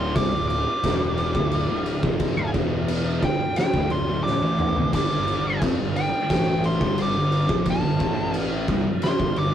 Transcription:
Already playing: picked electric bass D1, distorted electric guitar D2 A2 D3, tonewheel organ D4 A4 D5, lead electric guitar C6
0.14 picked electric bass C2, distorted electric guitar C3 G3, lead electric guitar D6, kick, crash
0.32 picked electric bass D1, distorted electric guitar D2 A2
0.48 tonewheel organ G4, lead electric guitar D6, crash
0.83 picked electric bass E1, distorted electric guitar E2 B2 E3, kick, snare, crash
1.18 crash
1.35 picked electric bass D1, distorted electric guitar D2 A2 D3, kick
1.51 crash
1.69 picked electric bass D1, distorted electric guitar D2 A2
1.86 crash
2.03 picked electric bass F1, distorted electric guitar F2 C3 F3, kick
2.20 kick, crash
2.37 picked electric bass D1, distorted electric guitar D2 A2
2.54 picked electric bass E1, distorted electric guitar E2 B2 E3, tonewheel organ E4 B4, kick, crash
2.88 crash
3.22 picked electric bass G1, distorted electric guitar G2 D3, tonewheel organ D4 A4, lead electric guitar G5, kick, crash
3.40 muted picked electric bass stroke, muted distorted electric guitar stroke
3.56 lead electric guitar G5, snare, crash
3.74 picked electric bass D1, distorted electric guitar D2 A2, kick
3.90 picked electric bass D1, distorted electric guitar D2 A2, lead electric guitar C6, crash
4.08 picked electric bass D1, distorted electric guitar D2 A2
4.24 lead electric guitar D6, snare
4.42 picked electric bass A1, distorted electric guitar A2 E3 A3
4.59 mid tom
4.76 floor tom
4.93 picked electric bass G1, distorted electric guitar G2 D3 G3, tonewheel organ G3, lead electric guitar D6, kick, splash, crash
5.28 crash
5.61 picked electric bass F2, distorted electric guitar F3 C4, kick, crash
5.79 picked electric bass G1, distorted electric guitar G2 D3
5.96 lead electric guitar G5, crash
6.29 picked electric bass A1, distorted electric guitar A2 E3 A3, lead electric guitar G5, kick, snare, crash
6.64 lead electric guitar C6, crash
6.80 picked electric bass G1, distorted electric guitar G2 D3 G3, kick, snare
6.98 crash
7.02 lead electric guitar D6
7.15 picked electric bass G1, distorted electric guitar G2 D3
7.32 crash
7.48 picked electric bass A#1, distorted electric guitar A#2 F3 A#3, kick
7.66 kick, crash
7.70 lead electric guitar A5
7.83 picked electric bass G1, distorted electric guitar G2 D3
7.99 picked electric bass A1, distorted electric guitar A2 E3 A3, tonewheel organ A3 E4 A4, kick, crash
8.34 crash
8.68 picked electric bass C2, distorted electric guitar C3 G3, tonewheel organ G3 D4, kick, crash
8.85 muted distorted electric guitar stroke, muted picked electric bass stroke
9.02 lead electric guitar C6, snare, crash
9.19 picked electric bass G1, distorted electric guitar G2 D3, kick
9.36 picked electric bass G1, distorted electric guitar G2 D3, lead electric guitar D6, crash

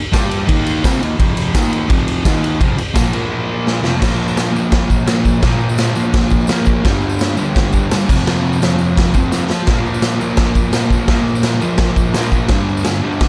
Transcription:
0.12 distorted electric guitar G3 D4 G4, kick, snare, ride, tambourine
0.31 ride
0.47 distorted electric guitar D#3 A#3 D#4, kick, ride
0.67 ride
0.84 distorted electric guitar C3 G3 C4, kick, snare, ride, tambourine
1.01 distorted electric guitar D#3 A#3, ride
1.19 distorted electric guitar F2 C3 F3, kick, ride
1.37 ride
1.55 distorted electric guitar D#3 A#3 D#4, kick, snare, ride, tambourine
1.73 ride
1.89 distorted electric guitar F2 C3 F3, kick, ride
2.08 ride
2.25 distorted electric guitar D#3 A#3 D#4, kick, snare, ride, tambourine
2.44 ride
2.59 distorted electric guitar F2 C3 F3, kick, ride
2.78 muted distorted electric guitar stroke, ride
2.94 distorted electric guitar A#2 F3 A#3, kick, snare, ride, tambourine
3.13 distorted electric guitar A#2 F3 A#3, ride
3.67 snare
3.83 distorted electric guitar F2 C3 F3, snare
4.01 distorted electric guitar A#2 F3 A#3, kick, snare, crash
4.12 tambourine
4.19 tambourine
4.28 tambourine
4.37 snare, tambourine, crash
4.53 distorted electric guitar A#2 F3 A#3, tambourine
4.65 tambourine
4.72 kick, snare, tambourine, crash
4.90 kick, tambourine
5.00 tambourine
5.06 distorted electric guitar A#2 F3 A#3, snare, tambourine, crash
5.25 kick, tambourine
5.42 distorted electric guitar A#2 F3 A#3, kick, snare, crash
5.51 tambourine
5.60 tambourine
5.69 tambourine
5.78 snare, tambourine, crash
5.87 tambourine
5.95 distorted electric guitar A#2 F3 A#3, tambourine
6.04 tambourine
6.13 kick, snare, tambourine, crash
6.30 kick, tambourine
6.40 tambourine
6.47 distorted electric guitar A#2, snare, tambourine, crash
6.51 distorted electric guitar F3 A#3
6.65 kick, tambourine
6.84 distorted electric guitar G2 D3, kick, snare, crash
6.88 distorted electric guitar G3, tambourine
7.01 tambourine
7.09 tambourine
7.19 snare, tambourine, crash
7.37 distorted electric guitar G2 D3 G3, tambourine
7.46 tambourine
7.54 kick, snare, tambourine, crash
7.72 kick, tambourine
7.83 tambourine
7.91 distorted electric guitar G2 D3 G3, snare, tambourine, crash
8.08 distorted electric guitar F2 C3 F3, kick, tambourine, crash
8.27 snare, tambourine, crash
8.36 tambourine
8.45 tambourine
8.53 tambourine
8.61 distorted electric guitar F2 C3 F3, snare, tambourine, crash
8.70 tambourine
8.78 tambourine
8.88 tambourine
8.97 kick, snare, tambourine, crash
9.05 tambourine
9.14 distorted electric guitar C3 F3, kick, tambourine
9.19 distorted electric guitar F2
9.24 tambourine
9.32 snare, tambourine
9.42 tambourine
9.50 snare, tambourine
9.61 tambourine
9.67 distorted electric guitar A#2 F3 A#3, kick, snare, crash
9.76 tambourine
9.86 tambourine
9.94 tambourine
10.02 snare, tambourine, crash
10.19 distorted electric guitar A#2 F3 A#3, tambourine
10.30 tambourine
10.37 kick, snare, tambourine, crash
10.55 kick, tambourine
10.65 tambourine
10.73 distorted electric guitar A#2 F3 A#3, snare, tambourine, crash
10.90 kick, tambourine
11.08 distorted electric guitar A#2 F3 A#3, kick, snare, crash
11.19 tambourine
11.28 tambourine
11.35 tambourine
11.43 snare, tambourine, crash
11.61 distorted electric guitar A#2 F3 A#3, tambourine
11.78 kick, snare, crash
11.96 kick, tambourine
12.14 distorted electric guitar A#2 F3 A#3, snare, tambourine, crash
12.32 kick, tambourine
12.48 distorted electric guitar G2 D3, kick, snare, crash
12.53 distorted electric guitar G3
12.60 tambourine
12.69 tambourine
12.77 tambourine
12.85 snare, tambourine, crash
13.03 distorted electric guitar D3 G3
13.07 distorted electric guitar G2
13.12 tambourine
13.20 kick, snare, tambourine, crash

